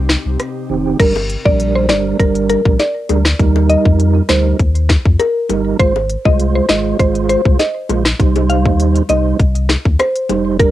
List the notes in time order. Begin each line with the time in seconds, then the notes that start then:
Already playing: C2 C3 C4 D#4 G4
0.09 cross-stick, snare
0.25 C2
0.40 cross-stick, closed hi-hat
0.69 F1 D#3 C4 G4
0.99 G1 G3 D4 A#4, kick, closed hi-hat, crash
1.16 high bongo
1.30 closed hi-hat
1.45 A#1 G3 D4 A#4 D5, kick
1.60 closed hi-hat
1.75 C5
1.89 G1 G3 D4 A#4 D5, cross-stick, snare, closed hi-hat, low bongo
2.19 G1 G3 D4 A#4, kick, closed hi-hat
2.35 closed hi-hat
2.49 A#4, closed hi-hat, high bongo
2.65 A#1 G3 D4 A#4, kick
2.79 D5, snare, closed hi-hat, high bongo
3.09 D2 G3 D4 A#4, closed hi-hat, high bongo, low bongo
3.25 cross-stick, snare
3.39 D#2 G3 D#4 A#4, kick, closed hi-hat
3.56 high bongo
3.70 D#5, closed hi-hat
3.85 F2, kick
4.00 closed hi-hat
4.29 D2 G3 D#4 A#4 C5, cross-stick, snare, closed hi-hat, low bongo
4.59 D#2, kick, closed hi-hat
4.75 closed hi-hat
4.89 kick, cross-stick, snare, closed hi-hat, high bongo
5.05 F2, kick
5.19 A#4, closed hi-hat, high bongo
5.49 G1 G3 D#4 A#4, closed hi-hat, high bongo, low bongo
5.79 G#1 G#3 F4 C5, kick, closed hi-hat
5.96 high bongo
6.10 closed hi-hat
6.25 C2 G#3 F4 C5 D#5, kick
6.40 closed hi-hat
6.55 C5
6.69 G#1 G#3 F4 C5 D#5, cross-stick, snare, closed hi-hat, low bongo
6.99 G#1 G#3 F4 C5, kick, closed hi-hat
7.15 closed hi-hat
7.29 C5, closed hi-hat, high bongo
7.45 C2 G#3 F4 C5, kick
7.59 D#5, snare, closed hi-hat, high bongo
7.89 A#1 G#3 F4 C5, closed hi-hat, high bongo, low bongo
8.05 cross-stick, snare
8.19 C2 G3 D#4 C5, kick, closed hi-hat
8.36 closed hi-hat, high bongo
8.50 F5, closed hi-hat
8.66 D#2, kick
8.80 closed hi-hat
8.96 closed hi-hat
9.09 C2 G3 D#4 C5 D#5, closed hi-hat, low bongo
9.40 C2, kick, closed hi-hat
9.55 closed hi-hat
9.69 cross-stick, snare, closed hi-hat, high bongo
9.85 D#2, kick
9.99 C5, cross-stick, closed hi-hat, high bongo
10.16 closed hi-hat
10.29 F1 G3 D#4 C5, closed hi-hat, high bongo, low bongo
10.59 G1 G3 D4 A#4, kick, closed hi-hat